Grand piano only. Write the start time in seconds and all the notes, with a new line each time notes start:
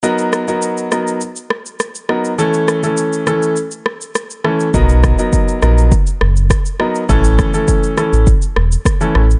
0.03 F#3 B3 D#4 A#4
0.48 F#3 B3 D#4 A#4
0.91 F#3 B3 D#4 A#4
2.09 F#3 B3 D#4 A#4
2.38 E3 A3 C#4 A4
2.83 E3 A3 C#4 A4
3.27 E3 A3 C#4 A4
4.44 E3 A3 C#4 A4
4.74 F#3 B3 D#4 A#4
5.18 F#3 B3 D#4 A#4
5.62 F#3 B3 D#4 A#4
6.80 F#3 B3 D#4 A#4
7.09 E3 A3 C#4 A4
7.54 E3 A3 C#4 A4
7.97 E3 A3 C#4 A4
9.01 E3 A3 C#4 A4